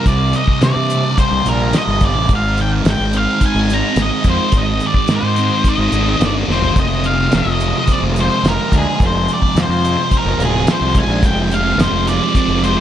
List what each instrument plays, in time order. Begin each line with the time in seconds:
Already playing: distorted electric guitar G2 C3 G3
0.06 fingered electric bass C2, distorted electric guitar C2, lead electric guitar D5, kick, closed hi-hat
0.33 distorted electric guitar G2, lead electric guitar D#5, closed hi-hat
0.48 kick
0.61 distorted electric guitar G2, fingered electric bass C3, lead electric guitar D5, snare, closed hi-hat
0.76 fingered electric bass C3
0.90 distorted electric guitar C3, closed hi-hat
1.18 distorted electric guitar G3, lead electric guitar C5, kick, closed hi-hat
1.31 fingered electric bass C2
1.46 fingered electric bass A#1, distorted electric guitar C3, lead electric guitar A#4, closed hi-hat
1.73 distorted electric guitar G2, lead electric guitar D#5, snare, closed hi-hat
1.87 fingered electric bass G1, snare
2.01 distorted electric guitar C3, kick, closed hi-hat
2.05 lead electric guitar D5
2.15 fingered electric bass A1
2.29 fingered electric bass G#1, distorted electric guitar G#2, kick, closed hi-hat
2.35 lead electric guitar F5
2.57 distorted electric guitar D#3, lead electric guitar G5, closed hi-hat
2.85 fingered electric bass G#1, distorted electric guitar G#3, snare, closed hi-hat
2.90 lead electric guitar G5
2.99 fingered electric bass G#1
3.13 distorted electric guitar C4, closed hi-hat
3.18 lead electric guitar F5
3.41 distorted electric guitar D#4, kick, closed hi-hat
3.46 lead electric guitar G#5
3.54 fingered electric bass G#1
3.70 distorted electric guitar C4, lead electric guitar A#5, closed hi-hat
3.96 fingered electric bass G#1, distorted electric guitar G#3, snare, closed hi-hat
4.02 lead electric guitar D#5
4.24 fingered electric bass F2, distorted electric guitar C4, kick, closed hi-hat
4.29 lead electric guitar C5
4.52 fingered electric bass G#1, distorted electric guitar G#2, kick, closed hi-hat
4.58 lead electric guitar D#5
4.80 distorted electric guitar D#3, closed hi-hat
4.87 lead electric guitar D5
4.94 kick
5.08 fingered electric bass G#2, distorted electric guitar G#3, snare, closed hi-hat
5.15 lead electric guitar C5
5.22 fingered electric bass G#2
5.36 distorted electric guitar C4, closed hi-hat
5.64 distorted electric guitar D#4, kick, closed hi-hat
5.69 lead electric guitar D#5
5.78 fingered electric bass G#1
5.92 fingered electric bass G#1, distorted electric guitar C4, closed hi-hat
6.20 fingered electric bass G1, distorted electric guitar G#3, snare, closed hi-hat
6.25 lead electric guitar D5
6.48 fingered electric bass F1, distorted electric guitar C4, lead electric guitar C5, snare
6.62 floor tom
6.76 fingered electric bass F1, distorted electric guitar F2, kick, closed hi-hat
6.80 lead electric guitar D#5
7.04 distorted electric guitar C3, lead electric guitar F5, closed hi-hat
7.32 fingered electric bass F1, distorted electric guitar F3, snare, closed hi-hat
7.36 lead electric guitar D#5
7.45 fingered electric bass F1
7.60 distorted electric guitar G#3, closed hi-hat
7.87 distorted electric guitar C4, kick, closed hi-hat
7.93 lead electric guitar D5
8.02 fingered electric bass F1
8.16 distorted electric guitar G#3, closed hi-hat
8.21 lead electric guitar C5
8.43 fingered electric bass F1, distorted electric guitar F3, snare, closed hi-hat
8.48 lead electric guitar A#4
8.72 fingered electric bass D2, distorted electric guitar G#3, kick, snare, closed hi-hat
8.78 lead electric guitar G#4
8.99 fingered electric bass F1, distorted electric guitar F2, kick, closed hi-hat
9.06 lead electric guitar C5
9.28 distorted electric guitar C3, closed hi-hat
9.33 lead electric guitar D5
9.42 kick
9.55 fingered electric bass F2, distorted electric guitar F3, snare, closed hi-hat
9.62 lead electric guitar C5
9.68 fingered electric bass F2
9.85 distorted electric guitar G#3, closed hi-hat
10.11 distorted electric guitar C4, kick, closed hi-hat
10.17 lead electric guitar A#4
10.25 fingered electric bass F1
10.38 fingered electric bass D1, distorted electric guitar G#3, closed hi-hat
10.45 lead electric guitar G#4
10.67 distorted electric guitar F3, lead electric guitar C5, snare, closed hi-hat
10.81 fingered electric bass C2
10.95 distorted electric guitar G#3, lead electric guitar G#5, kick, closed hi-hat
11.07 fingered electric bass A#1, snare
11.22 fingered electric bass F1, distorted electric guitar F2, lead electric guitar G5, kick, closed hi-hat
11.50 distorted electric guitar C3, closed hi-hat
11.54 lead electric guitar F5
11.77 fingered electric bass F1, distorted electric guitar F3, lead electric guitar C5, snare, closed hi-hat
11.91 fingered electric bass F1
12.07 distorted electric guitar G#3, lead electric guitar D5, closed hi-hat
12.35 distorted electric guitar C4, lead electric guitar D5, kick, closed hi-hat
12.48 fingered electric bass F1
12.63 distorted electric guitar G#3, lead electric guitar C5, closed hi-hat